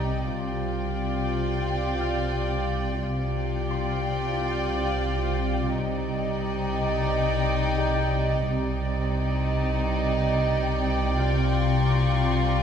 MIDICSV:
0, 0, Header, 1, 7, 480
1, 0, Start_track
1, 0, Key_signature, -3, "minor"
1, 0, Tempo, 680272
1, 218, Time_signature, 4, 2, 24, 8
1, 8911, End_track
2, 0, Start_track
2, 0, Title_t, "Violin section"
2, 0, Program_c, 0, 48
2, 7893, Note_on_c, 0, 82, 35
2, 7894, Note_on_c, 0, 84, 33
2, 7895, Note_on_c, 0, 85, 34
2, 8911, Note_off_c, 0, 82, 0
2, 8911, Note_off_c, 0, 84, 0
2, 8911, Note_off_c, 0, 85, 0
2, 8911, End_track
3, 0, Start_track
3, 0, Title_t, "Violin section"
3, 0, Program_c, 1, 48
3, 0, Note_on_c, 1, 79, 36
3, 187, Note_off_c, 1, 79, 0
3, 214, Note_on_c, 1, 79, 42
3, 2114, Note_off_c, 1, 79, 0
3, 2150, Note_on_c, 1, 79, 46
3, 4038, Note_off_c, 1, 79, 0
3, 4067, Note_on_c, 1, 79, 51
3, 5950, Note_off_c, 1, 79, 0
3, 5971, Note_on_c, 1, 79, 52
3, 8911, Note_off_c, 1, 79, 0
3, 8911, End_track
4, 0, Start_track
4, 0, Title_t, "Harp"
4, 0, Program_c, 2, 46
4, 1412, Note_on_c, 2, 89, 31
4, 1417, Note_on_c, 2, 77, 27
4, 2614, Note_on_c, 2, 84, 32
4, 4076, Note_off_c, 2, 89, 0
4, 4078, Note_off_c, 2, 77, 0
4, 5366, Note_off_c, 2, 84, 0
4, 5489, Note_on_c, 2, 67, 27
4, 5502, Note_on_c, 2, 79, 36
4, 7896, Note_on_c, 2, 77, 32
4, 7901, Note_on_c, 2, 65, 29
4, 8241, Note_off_c, 2, 67, 0
4, 8253, Note_off_c, 2, 79, 0
4, 8911, Note_off_c, 2, 65, 0
4, 8911, Note_off_c, 2, 77, 0
4, 8911, End_track
5, 0, Start_track
5, 0, Title_t, "Violin section"
5, 0, Program_c, 3, 48
5, 0, Note_on_c, 3, 63, 35
5, 0, Note_on_c, 3, 74, 33
5, 186, Note_off_c, 3, 63, 0
5, 187, Note_off_c, 3, 74, 0
5, 209, Note_on_c, 3, 74, 37
5, 210, Note_on_c, 3, 65, 37
5, 2112, Note_off_c, 3, 65, 0
5, 2112, Note_off_c, 3, 74, 0
5, 2141, Note_on_c, 3, 74, 44
5, 2144, Note_on_c, 3, 65, 44
5, 4033, Note_off_c, 3, 74, 0
5, 4035, Note_off_c, 3, 65, 0
5, 4064, Note_on_c, 3, 74, 46
5, 4065, Note_on_c, 3, 63, 51
5, 5949, Note_off_c, 3, 74, 0
5, 5950, Note_off_c, 3, 63, 0
5, 5980, Note_on_c, 3, 63, 47
5, 5983, Note_on_c, 3, 74, 49
5, 7867, Note_off_c, 3, 63, 0
5, 7903, Note_on_c, 3, 65, 46
5, 8911, Note_off_c, 3, 65, 0
5, 8911, Note_off_c, 3, 74, 0
5, 8911, End_track
6, 0, Start_track
6, 0, Title_t, "Cello section"
6, 0, Program_c, 4, 48
6, 0, Note_on_c, 4, 48, 32
6, 188, Note_off_c, 4, 48, 0
6, 212, Note_on_c, 4, 48, 36
6, 2113, Note_off_c, 4, 48, 0
6, 2144, Note_on_c, 4, 48, 41
6, 4034, Note_off_c, 4, 48, 0
6, 4066, Note_on_c, 4, 48, 45
6, 5950, Note_off_c, 4, 48, 0
6, 5974, Note_on_c, 4, 48, 46
6, 8911, Note_off_c, 4, 48, 0
6, 8911, End_track
7, 0, Start_track
7, 0, Title_t, "Double bass section"
7, 0, Program_c, 5, 48
7, 0, Note_on_c, 5, 36, 34
7, 189, Note_off_c, 5, 36, 0
7, 216, Note_on_c, 5, 36, 38
7, 2115, Note_off_c, 5, 36, 0
7, 2146, Note_on_c, 5, 36, 42
7, 4035, Note_off_c, 5, 36, 0
7, 4066, Note_on_c, 5, 36, 45
7, 5950, Note_off_c, 5, 36, 0
7, 5979, Note_on_c, 5, 36, 51
7, 8911, Note_off_c, 5, 36, 0
7, 8911, End_track
0, 0, End_of_file